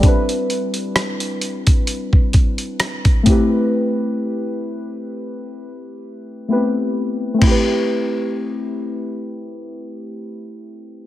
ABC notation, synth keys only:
X:1
M:4/4
L:1/8
Q:"Swing 16ths" 1/4=65
K:Am
V:1 name="Synth keys"
[G,CDEB]6- [G,CDEB] [A,CEGB]- | [A,CEGB]6 [A,B,CEGB]2 | [A,CEGB]8 |]